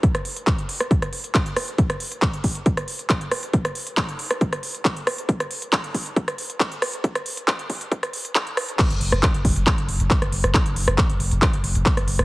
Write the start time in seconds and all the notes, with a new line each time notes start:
0.03 kick, closed hi-hat
0.15 cross-stick, closed hi-hat
0.25 open hi-hat
0.37 closed hi-hat
0.47 kick, clap, closed hi-hat
0.59 closed hi-hat
0.69 open hi-hat
0.80 cross-stick, closed hi-hat
0.91 kick, closed hi-hat
1.02 cross-stick, closed hi-hat
1.13 open hi-hat
1.24 closed hi-hat
1.35 kick, clap, closed hi-hat
1.46 closed hi-hat
1.56 cross-stick, open hi-hat
1.68 closed hi-hat
1.78 kick, closed hi-hat
1.90 cross-stick, closed hi-hat
2.00 open hi-hat
2.12 closed hi-hat
2.22 kick, clap, closed hi-hat
2.34 closed hi-hat
2.44 kick, open hi-hat
2.55 closed hi-hat
2.66 kick, closed hi-hat
2.77 cross-stick, closed hi-hat
2.88 open hi-hat
2.99 closed hi-hat
3.10 kick, clap, closed hi-hat
3.21 closed hi-hat
3.31 cross-stick, open hi-hat
3.43 closed hi-hat
3.53 kick, closed hi-hat
3.65 cross-stick, closed hi-hat
3.75 open hi-hat
3.87 closed hi-hat
3.97 kick, clap, closed hi-hat
4.09 closed hi-hat
4.19 open hi-hat
4.31 cross-stick, closed hi-hat
4.41 kick, closed hi-hat
4.53 cross-stick, closed hi-hat
4.63 open hi-hat
4.75 closed hi-hat
4.85 kick, clap, closed hi-hat
4.97 closed hi-hat
5.07 cross-stick, open hi-hat
5.18 closed hi-hat
5.29 kick, closed hi-hat
5.40 cross-stick, closed hi-hat
5.51 open hi-hat
5.62 closed hi-hat
5.73 kick, clap, closed hi-hat
5.84 closed hi-hat
5.94 kick, open hi-hat
6.06 closed hi-hat
6.16 kick, closed hi-hat
6.28 cross-stick, closed hi-hat
6.38 open hi-hat
6.50 closed hi-hat
6.60 kick, clap, closed hi-hat
6.72 closed hi-hat
6.82 cross-stick, open hi-hat
6.94 closed hi-hat
7.04 kick, closed hi-hat
7.15 cross-stick, closed hi-hat
7.26 open hi-hat
7.37 closed hi-hat
7.48 kick, clap, closed hi-hat
7.59 closed hi-hat
7.70 kick, open hi-hat
7.81 closed hi-hat
7.92 kick, closed hi-hat
8.03 cross-stick, closed hi-hat
8.13 open hi-hat
8.25 closed hi-hat
8.35 kick, clap, closed hi-hat
8.47 closed hi-hat
8.57 cross-stick, open hi-hat
8.69 closed hi-hat
8.79 kick, clap, closed hi-hat, crash
8.90 F#1, closed hi-hat
9.01 F#1, open hi-hat
9.12 F#1, cross-stick, closed hi-hat
9.23 kick, clap, closed hi-hat
9.34 F#1, closed hi-hat
9.45 F#1, kick, open hi-hat
9.56 F#1, closed hi-hat
9.67 kick, clap, closed hi-hat
9.78 F#1, closed hi-hat
9.88 F#1, open hi-hat
10.00 F#1, closed hi-hat
10.11 kick, clap, closed hi-hat
10.22 F#1, cross-stick, closed hi-hat
10.32 F#1, open hi-hat
10.44 F#1, cross-stick, closed hi-hat
10.54 kick, clap, closed hi-hat
10.66 F#1, closed hi-hat
10.76 F#1, open hi-hat
10.87 F#1, cross-stick
10.98 kick, clap, closed hi-hat
11.09 F#1, closed hi-hat
11.20 F#1, open hi-hat
11.31 F#1, closed hi-hat
11.42 kick, clap, closed hi-hat
11.53 F#1, closed hi-hat
11.64 F#1, open hi-hat
11.75 F#1, closed hi-hat
11.86 kick, clap, closed hi-hat
11.97 F#1, cross-stick, closed hi-hat
12.08 F#1, open hi-hat
12.19 F#1, cross-stick, closed hi-hat